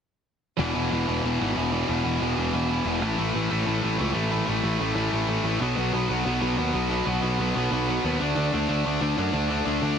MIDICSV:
0, 0, Header, 1, 3, 480
1, 0, Start_track
1, 0, Tempo, 324149
1, 866, Time_signature, 4, 2, 24, 8
1, 14789, End_track
2, 0, Start_track
2, 0, Title_t, "Distorted electric guitar"
2, 0, Program_c, 0, 30
2, 871, Note_on_c, 0, 40, 87
2, 878, Note_on_c, 0, 47, 90
2, 885, Note_on_c, 0, 52, 101
2, 1101, Note_off_c, 0, 47, 0
2, 1102, Note_off_c, 0, 52, 0
2, 1108, Note_on_c, 0, 52, 77
2, 1119, Note_on_c, 0, 47, 74
2, 1128, Note_off_c, 0, 40, 0
2, 1134, Note_on_c, 0, 40, 63
2, 1340, Note_off_c, 0, 40, 0
2, 1341, Note_off_c, 0, 47, 0
2, 1346, Note_on_c, 0, 40, 75
2, 1359, Note_on_c, 0, 47, 82
2, 1362, Note_off_c, 0, 52, 0
2, 1368, Note_on_c, 0, 52, 80
2, 1579, Note_off_c, 0, 47, 0
2, 1581, Note_off_c, 0, 52, 0
2, 1587, Note_on_c, 0, 52, 95
2, 1592, Note_off_c, 0, 40, 0
2, 1597, Note_on_c, 0, 47, 87
2, 1609, Note_on_c, 0, 40, 88
2, 1821, Note_off_c, 0, 40, 0
2, 1834, Note_off_c, 0, 47, 0
2, 1839, Note_on_c, 0, 40, 84
2, 1846, Note_off_c, 0, 52, 0
2, 1852, Note_on_c, 0, 47, 75
2, 1852, Note_on_c, 0, 52, 84
2, 2076, Note_off_c, 0, 52, 0
2, 2080, Note_off_c, 0, 47, 0
2, 2082, Note_on_c, 0, 52, 83
2, 2086, Note_off_c, 0, 40, 0
2, 2098, Note_on_c, 0, 47, 69
2, 2104, Note_on_c, 0, 40, 70
2, 2295, Note_off_c, 0, 40, 0
2, 2311, Note_off_c, 0, 47, 0
2, 2312, Note_on_c, 0, 40, 78
2, 2325, Note_off_c, 0, 52, 0
2, 2329, Note_on_c, 0, 47, 77
2, 2331, Note_on_c, 0, 52, 80
2, 2544, Note_off_c, 0, 52, 0
2, 2549, Note_off_c, 0, 47, 0
2, 2550, Note_on_c, 0, 52, 90
2, 2558, Note_off_c, 0, 40, 0
2, 2567, Note_on_c, 0, 47, 94
2, 2576, Note_on_c, 0, 40, 75
2, 2771, Note_off_c, 0, 40, 0
2, 2778, Note_off_c, 0, 47, 0
2, 2788, Note_on_c, 0, 40, 81
2, 2795, Note_on_c, 0, 47, 89
2, 2805, Note_off_c, 0, 52, 0
2, 2811, Note_on_c, 0, 52, 104
2, 3016, Note_off_c, 0, 47, 0
2, 3019, Note_off_c, 0, 52, 0
2, 3025, Note_on_c, 0, 52, 83
2, 3029, Note_off_c, 0, 40, 0
2, 3034, Note_on_c, 0, 47, 79
2, 3047, Note_on_c, 0, 40, 66
2, 3251, Note_off_c, 0, 40, 0
2, 3260, Note_off_c, 0, 47, 0
2, 3269, Note_on_c, 0, 40, 77
2, 3276, Note_off_c, 0, 52, 0
2, 3278, Note_on_c, 0, 47, 78
2, 3281, Note_on_c, 0, 52, 89
2, 3495, Note_off_c, 0, 52, 0
2, 3500, Note_off_c, 0, 47, 0
2, 3501, Note_on_c, 0, 52, 94
2, 3505, Note_off_c, 0, 40, 0
2, 3518, Note_on_c, 0, 47, 81
2, 3523, Note_on_c, 0, 40, 79
2, 3740, Note_off_c, 0, 40, 0
2, 3750, Note_off_c, 0, 47, 0
2, 3758, Note_on_c, 0, 40, 71
2, 3768, Note_off_c, 0, 52, 0
2, 3768, Note_on_c, 0, 47, 85
2, 3774, Note_on_c, 0, 52, 88
2, 3991, Note_off_c, 0, 47, 0
2, 3994, Note_off_c, 0, 52, 0
2, 3999, Note_off_c, 0, 40, 0
2, 4000, Note_on_c, 0, 52, 85
2, 4009, Note_on_c, 0, 47, 72
2, 4017, Note_on_c, 0, 40, 61
2, 4221, Note_off_c, 0, 40, 0
2, 4226, Note_off_c, 0, 47, 0
2, 4239, Note_on_c, 0, 40, 76
2, 4244, Note_on_c, 0, 47, 78
2, 4246, Note_off_c, 0, 52, 0
2, 4252, Note_on_c, 0, 52, 82
2, 4456, Note_off_c, 0, 40, 0
2, 4458, Note_off_c, 0, 47, 0
2, 4475, Note_on_c, 0, 45, 99
2, 4481, Note_off_c, 0, 52, 0
2, 4487, Note_on_c, 0, 52, 99
2, 4497, Note_on_c, 0, 57, 90
2, 4710, Note_off_c, 0, 57, 0
2, 4716, Note_on_c, 0, 57, 96
2, 4725, Note_off_c, 0, 52, 0
2, 4731, Note_off_c, 0, 45, 0
2, 4731, Note_on_c, 0, 52, 96
2, 4737, Note_on_c, 0, 45, 77
2, 4953, Note_off_c, 0, 45, 0
2, 4958, Note_on_c, 0, 45, 78
2, 4962, Note_off_c, 0, 52, 0
2, 4968, Note_on_c, 0, 52, 78
2, 4973, Note_off_c, 0, 57, 0
2, 4979, Note_on_c, 0, 57, 86
2, 5192, Note_off_c, 0, 57, 0
2, 5198, Note_on_c, 0, 57, 85
2, 5204, Note_off_c, 0, 52, 0
2, 5210, Note_off_c, 0, 45, 0
2, 5210, Note_on_c, 0, 52, 72
2, 5216, Note_on_c, 0, 45, 70
2, 5408, Note_off_c, 0, 45, 0
2, 5420, Note_off_c, 0, 52, 0
2, 5426, Note_on_c, 0, 45, 88
2, 5428, Note_off_c, 0, 57, 0
2, 5438, Note_on_c, 0, 52, 88
2, 5445, Note_on_c, 0, 57, 92
2, 5644, Note_off_c, 0, 57, 0
2, 5652, Note_off_c, 0, 52, 0
2, 5661, Note_off_c, 0, 45, 0
2, 5662, Note_on_c, 0, 57, 79
2, 5670, Note_on_c, 0, 52, 78
2, 5679, Note_on_c, 0, 45, 67
2, 5869, Note_off_c, 0, 45, 0
2, 5882, Note_off_c, 0, 52, 0
2, 5887, Note_on_c, 0, 45, 69
2, 5894, Note_off_c, 0, 57, 0
2, 5899, Note_on_c, 0, 52, 74
2, 5912, Note_on_c, 0, 57, 85
2, 6100, Note_off_c, 0, 57, 0
2, 6110, Note_off_c, 0, 52, 0
2, 6117, Note_on_c, 0, 57, 81
2, 6121, Note_off_c, 0, 45, 0
2, 6128, Note_on_c, 0, 52, 72
2, 6139, Note_on_c, 0, 45, 61
2, 6353, Note_off_c, 0, 45, 0
2, 6364, Note_off_c, 0, 52, 0
2, 6371, Note_on_c, 0, 45, 92
2, 6375, Note_off_c, 0, 57, 0
2, 6382, Note_on_c, 0, 52, 91
2, 6393, Note_on_c, 0, 57, 104
2, 6586, Note_off_c, 0, 57, 0
2, 6603, Note_off_c, 0, 52, 0
2, 6604, Note_on_c, 0, 57, 106
2, 6606, Note_off_c, 0, 45, 0
2, 6621, Note_on_c, 0, 52, 91
2, 6623, Note_on_c, 0, 45, 82
2, 6827, Note_off_c, 0, 45, 0
2, 6845, Note_off_c, 0, 52, 0
2, 6845, Note_on_c, 0, 45, 78
2, 6853, Note_off_c, 0, 57, 0
2, 6862, Note_on_c, 0, 52, 77
2, 6871, Note_on_c, 0, 57, 86
2, 7074, Note_off_c, 0, 57, 0
2, 7088, Note_off_c, 0, 52, 0
2, 7091, Note_on_c, 0, 57, 84
2, 7100, Note_off_c, 0, 45, 0
2, 7106, Note_on_c, 0, 52, 74
2, 7118, Note_on_c, 0, 45, 73
2, 7315, Note_off_c, 0, 45, 0
2, 7324, Note_off_c, 0, 52, 0
2, 7332, Note_off_c, 0, 57, 0
2, 7333, Note_on_c, 0, 45, 89
2, 7341, Note_on_c, 0, 52, 91
2, 7350, Note_on_c, 0, 57, 91
2, 7566, Note_off_c, 0, 57, 0
2, 7571, Note_off_c, 0, 52, 0
2, 7583, Note_on_c, 0, 57, 90
2, 7584, Note_off_c, 0, 45, 0
2, 7589, Note_on_c, 0, 52, 83
2, 7601, Note_on_c, 0, 45, 67
2, 7793, Note_off_c, 0, 45, 0
2, 7806, Note_off_c, 0, 52, 0
2, 7811, Note_on_c, 0, 45, 67
2, 7820, Note_off_c, 0, 57, 0
2, 7824, Note_on_c, 0, 52, 78
2, 7837, Note_on_c, 0, 57, 85
2, 8039, Note_off_c, 0, 57, 0
2, 8053, Note_off_c, 0, 52, 0
2, 8057, Note_on_c, 0, 57, 78
2, 8059, Note_off_c, 0, 45, 0
2, 8071, Note_on_c, 0, 52, 73
2, 8077, Note_on_c, 0, 45, 64
2, 8286, Note_off_c, 0, 57, 0
2, 8292, Note_off_c, 0, 45, 0
2, 8293, Note_off_c, 0, 52, 0
2, 8298, Note_on_c, 0, 47, 86
2, 8304, Note_on_c, 0, 54, 92
2, 8315, Note_on_c, 0, 59, 85
2, 8528, Note_off_c, 0, 59, 0
2, 8534, Note_on_c, 0, 59, 90
2, 8537, Note_off_c, 0, 54, 0
2, 8543, Note_on_c, 0, 54, 87
2, 8548, Note_off_c, 0, 47, 0
2, 8554, Note_on_c, 0, 47, 81
2, 8772, Note_off_c, 0, 47, 0
2, 8778, Note_on_c, 0, 47, 70
2, 8783, Note_off_c, 0, 54, 0
2, 8789, Note_on_c, 0, 54, 71
2, 8793, Note_off_c, 0, 59, 0
2, 8798, Note_on_c, 0, 59, 79
2, 9007, Note_off_c, 0, 59, 0
2, 9013, Note_on_c, 0, 59, 85
2, 9017, Note_off_c, 0, 54, 0
2, 9023, Note_on_c, 0, 54, 74
2, 9024, Note_off_c, 0, 47, 0
2, 9029, Note_on_c, 0, 47, 72
2, 9228, Note_off_c, 0, 47, 0
2, 9246, Note_on_c, 0, 47, 80
2, 9248, Note_off_c, 0, 59, 0
2, 9250, Note_off_c, 0, 54, 0
2, 9256, Note_on_c, 0, 54, 92
2, 9266, Note_on_c, 0, 59, 98
2, 9471, Note_off_c, 0, 59, 0
2, 9488, Note_off_c, 0, 47, 0
2, 9489, Note_on_c, 0, 59, 85
2, 9492, Note_off_c, 0, 54, 0
2, 9498, Note_on_c, 0, 54, 74
2, 9506, Note_on_c, 0, 47, 73
2, 9711, Note_off_c, 0, 47, 0
2, 9729, Note_on_c, 0, 47, 76
2, 9730, Note_off_c, 0, 59, 0
2, 9736, Note_off_c, 0, 54, 0
2, 9742, Note_on_c, 0, 54, 78
2, 9748, Note_on_c, 0, 59, 84
2, 9952, Note_off_c, 0, 59, 0
2, 9970, Note_on_c, 0, 59, 79
2, 9975, Note_off_c, 0, 47, 0
2, 9987, Note_off_c, 0, 54, 0
2, 9993, Note_on_c, 0, 47, 68
2, 9993, Note_on_c, 0, 54, 75
2, 10183, Note_off_c, 0, 47, 0
2, 10201, Note_on_c, 0, 47, 92
2, 10205, Note_off_c, 0, 59, 0
2, 10207, Note_off_c, 0, 54, 0
2, 10212, Note_on_c, 0, 54, 96
2, 10223, Note_on_c, 0, 59, 100
2, 10426, Note_off_c, 0, 59, 0
2, 10444, Note_on_c, 0, 59, 86
2, 10447, Note_off_c, 0, 47, 0
2, 10448, Note_off_c, 0, 54, 0
2, 10454, Note_on_c, 0, 54, 92
2, 10464, Note_on_c, 0, 47, 86
2, 10666, Note_off_c, 0, 47, 0
2, 10679, Note_off_c, 0, 59, 0
2, 10684, Note_on_c, 0, 47, 82
2, 10686, Note_off_c, 0, 54, 0
2, 10692, Note_on_c, 0, 54, 78
2, 10697, Note_on_c, 0, 59, 80
2, 10914, Note_off_c, 0, 59, 0
2, 10932, Note_on_c, 0, 59, 88
2, 10934, Note_off_c, 0, 47, 0
2, 10935, Note_off_c, 0, 54, 0
2, 10941, Note_on_c, 0, 54, 73
2, 10952, Note_on_c, 0, 47, 75
2, 11153, Note_off_c, 0, 47, 0
2, 11170, Note_on_c, 0, 47, 90
2, 11173, Note_off_c, 0, 59, 0
2, 11174, Note_off_c, 0, 54, 0
2, 11180, Note_on_c, 0, 54, 82
2, 11191, Note_on_c, 0, 59, 92
2, 11414, Note_off_c, 0, 59, 0
2, 11432, Note_on_c, 0, 59, 88
2, 11433, Note_off_c, 0, 47, 0
2, 11439, Note_off_c, 0, 54, 0
2, 11445, Note_on_c, 0, 54, 71
2, 11451, Note_on_c, 0, 47, 72
2, 11647, Note_off_c, 0, 47, 0
2, 11664, Note_on_c, 0, 47, 72
2, 11670, Note_off_c, 0, 54, 0
2, 11670, Note_off_c, 0, 59, 0
2, 11676, Note_on_c, 0, 54, 82
2, 11688, Note_on_c, 0, 59, 76
2, 11871, Note_off_c, 0, 59, 0
2, 11889, Note_on_c, 0, 59, 84
2, 11895, Note_off_c, 0, 47, 0
2, 11899, Note_off_c, 0, 54, 0
2, 11905, Note_on_c, 0, 54, 81
2, 11913, Note_on_c, 0, 47, 70
2, 12124, Note_off_c, 0, 59, 0
2, 12126, Note_off_c, 0, 47, 0
2, 12130, Note_off_c, 0, 54, 0
2, 12132, Note_on_c, 0, 50, 82
2, 12135, Note_on_c, 0, 57, 90
2, 12154, Note_on_c, 0, 62, 99
2, 12363, Note_off_c, 0, 62, 0
2, 12369, Note_on_c, 0, 62, 105
2, 12374, Note_off_c, 0, 57, 0
2, 12380, Note_on_c, 0, 57, 94
2, 12390, Note_off_c, 0, 50, 0
2, 12396, Note_on_c, 0, 50, 85
2, 12606, Note_off_c, 0, 50, 0
2, 12612, Note_on_c, 0, 50, 83
2, 12620, Note_off_c, 0, 57, 0
2, 12626, Note_on_c, 0, 57, 78
2, 12631, Note_off_c, 0, 62, 0
2, 12637, Note_on_c, 0, 62, 84
2, 12854, Note_off_c, 0, 62, 0
2, 12860, Note_on_c, 0, 62, 87
2, 12865, Note_off_c, 0, 57, 0
2, 12871, Note_on_c, 0, 57, 83
2, 12875, Note_off_c, 0, 50, 0
2, 12881, Note_on_c, 0, 50, 77
2, 13098, Note_off_c, 0, 50, 0
2, 13104, Note_on_c, 0, 50, 87
2, 13109, Note_off_c, 0, 57, 0
2, 13115, Note_on_c, 0, 57, 96
2, 13121, Note_off_c, 0, 62, 0
2, 13127, Note_on_c, 0, 62, 99
2, 13321, Note_off_c, 0, 62, 0
2, 13333, Note_off_c, 0, 57, 0
2, 13337, Note_off_c, 0, 50, 0
2, 13339, Note_on_c, 0, 62, 90
2, 13351, Note_on_c, 0, 57, 86
2, 13355, Note_on_c, 0, 50, 66
2, 13561, Note_off_c, 0, 50, 0
2, 13574, Note_off_c, 0, 57, 0
2, 13577, Note_off_c, 0, 62, 0
2, 13578, Note_on_c, 0, 50, 80
2, 13592, Note_on_c, 0, 57, 78
2, 13595, Note_on_c, 0, 62, 90
2, 13806, Note_off_c, 0, 62, 0
2, 13817, Note_off_c, 0, 57, 0
2, 13823, Note_off_c, 0, 50, 0
2, 13823, Note_on_c, 0, 62, 83
2, 13835, Note_on_c, 0, 57, 76
2, 13841, Note_on_c, 0, 50, 68
2, 14037, Note_off_c, 0, 50, 0
2, 14052, Note_off_c, 0, 57, 0
2, 14054, Note_on_c, 0, 50, 91
2, 14059, Note_off_c, 0, 62, 0
2, 14070, Note_on_c, 0, 57, 85
2, 14077, Note_on_c, 0, 62, 102
2, 14272, Note_off_c, 0, 62, 0
2, 14287, Note_off_c, 0, 57, 0
2, 14290, Note_on_c, 0, 62, 97
2, 14296, Note_off_c, 0, 50, 0
2, 14305, Note_on_c, 0, 57, 87
2, 14314, Note_on_c, 0, 50, 83
2, 14520, Note_off_c, 0, 50, 0
2, 14529, Note_off_c, 0, 57, 0
2, 14535, Note_off_c, 0, 62, 0
2, 14538, Note_on_c, 0, 50, 72
2, 14547, Note_on_c, 0, 57, 80
2, 14553, Note_on_c, 0, 62, 88
2, 14771, Note_off_c, 0, 62, 0
2, 14776, Note_off_c, 0, 57, 0
2, 14788, Note_off_c, 0, 50, 0
2, 14789, End_track
3, 0, Start_track
3, 0, Title_t, "Picked electric bass"
3, 0, Program_c, 1, 34
3, 874, Note_on_c, 1, 28, 83
3, 1067, Note_off_c, 1, 28, 0
3, 1106, Note_on_c, 1, 28, 78
3, 1302, Note_off_c, 1, 28, 0
3, 1348, Note_on_c, 1, 28, 80
3, 1543, Note_off_c, 1, 28, 0
3, 1596, Note_on_c, 1, 28, 83
3, 1788, Note_off_c, 1, 28, 0
3, 1824, Note_on_c, 1, 28, 82
3, 2021, Note_off_c, 1, 28, 0
3, 2084, Note_on_c, 1, 32, 89
3, 2272, Note_off_c, 1, 32, 0
3, 2308, Note_on_c, 1, 28, 83
3, 2699, Note_off_c, 1, 28, 0
3, 2794, Note_on_c, 1, 28, 80
3, 2986, Note_off_c, 1, 28, 0
3, 3024, Note_on_c, 1, 28, 75
3, 3220, Note_off_c, 1, 28, 0
3, 3264, Note_on_c, 1, 28, 85
3, 3460, Note_off_c, 1, 28, 0
3, 3510, Note_on_c, 1, 28, 88
3, 3703, Note_off_c, 1, 28, 0
3, 3747, Note_on_c, 1, 28, 86
3, 4138, Note_off_c, 1, 28, 0
3, 4218, Note_on_c, 1, 28, 85
3, 4463, Note_off_c, 1, 28, 0
3, 4463, Note_on_c, 1, 33, 75
3, 4659, Note_off_c, 1, 33, 0
3, 4700, Note_on_c, 1, 33, 84
3, 4897, Note_off_c, 1, 33, 0
3, 4948, Note_on_c, 1, 33, 76
3, 5142, Note_off_c, 1, 33, 0
3, 5198, Note_on_c, 1, 33, 81
3, 5388, Note_off_c, 1, 33, 0
3, 5431, Note_on_c, 1, 33, 88
3, 5624, Note_off_c, 1, 33, 0
3, 5683, Note_on_c, 1, 33, 87
3, 5871, Note_off_c, 1, 33, 0
3, 5919, Note_on_c, 1, 37, 90
3, 6109, Note_off_c, 1, 37, 0
3, 6145, Note_on_c, 1, 33, 93
3, 6537, Note_off_c, 1, 33, 0
3, 6627, Note_on_c, 1, 33, 84
3, 6822, Note_off_c, 1, 33, 0
3, 6861, Note_on_c, 1, 33, 76
3, 7059, Note_off_c, 1, 33, 0
3, 7099, Note_on_c, 1, 33, 84
3, 7297, Note_off_c, 1, 33, 0
3, 7314, Note_on_c, 1, 33, 84
3, 7523, Note_off_c, 1, 33, 0
3, 7586, Note_on_c, 1, 33, 84
3, 7978, Note_off_c, 1, 33, 0
3, 8047, Note_on_c, 1, 33, 88
3, 8250, Note_off_c, 1, 33, 0
3, 8299, Note_on_c, 1, 35, 77
3, 8497, Note_off_c, 1, 35, 0
3, 8542, Note_on_c, 1, 35, 77
3, 8740, Note_off_c, 1, 35, 0
3, 8786, Note_on_c, 1, 35, 77
3, 8982, Note_off_c, 1, 35, 0
3, 9019, Note_on_c, 1, 35, 83
3, 9218, Note_off_c, 1, 35, 0
3, 9260, Note_on_c, 1, 35, 84
3, 9459, Note_off_c, 1, 35, 0
3, 9497, Note_on_c, 1, 35, 86
3, 9697, Note_off_c, 1, 35, 0
3, 9736, Note_on_c, 1, 39, 86
3, 9937, Note_off_c, 1, 39, 0
3, 9974, Note_on_c, 1, 35, 92
3, 10372, Note_off_c, 1, 35, 0
3, 10460, Note_on_c, 1, 35, 84
3, 10659, Note_off_c, 1, 35, 0
3, 10700, Note_on_c, 1, 35, 85
3, 10899, Note_off_c, 1, 35, 0
3, 10932, Note_on_c, 1, 35, 87
3, 11134, Note_off_c, 1, 35, 0
3, 11185, Note_on_c, 1, 35, 83
3, 11382, Note_off_c, 1, 35, 0
3, 11415, Note_on_c, 1, 35, 85
3, 11814, Note_off_c, 1, 35, 0
3, 11902, Note_on_c, 1, 39, 87
3, 12101, Note_off_c, 1, 39, 0
3, 12150, Note_on_c, 1, 38, 75
3, 12346, Note_off_c, 1, 38, 0
3, 12382, Note_on_c, 1, 38, 81
3, 12581, Note_off_c, 1, 38, 0
3, 12638, Note_on_c, 1, 38, 85
3, 12830, Note_off_c, 1, 38, 0
3, 12869, Note_on_c, 1, 38, 84
3, 13066, Note_off_c, 1, 38, 0
3, 13116, Note_on_c, 1, 38, 83
3, 13309, Note_off_c, 1, 38, 0
3, 13343, Note_on_c, 1, 38, 83
3, 13542, Note_off_c, 1, 38, 0
3, 13591, Note_on_c, 1, 42, 89
3, 13787, Note_off_c, 1, 42, 0
3, 13818, Note_on_c, 1, 38, 92
3, 14216, Note_off_c, 1, 38, 0
3, 14309, Note_on_c, 1, 38, 86
3, 14506, Note_off_c, 1, 38, 0
3, 14538, Note_on_c, 1, 38, 87
3, 14740, Note_off_c, 1, 38, 0
3, 14789, End_track
0, 0, End_of_file